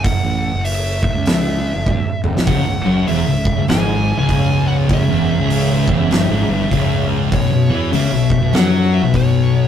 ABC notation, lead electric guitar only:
X:1
M:4/4
L:1/16
Q:"Swing" 1/4=99
K:C#m
V:1 name="Lead electric guitar"
f4 e2 e8 z2 | f4 e4 g3 g3 f2 | e12- e2 z2 | c4 e4 f2 e2 c4 |]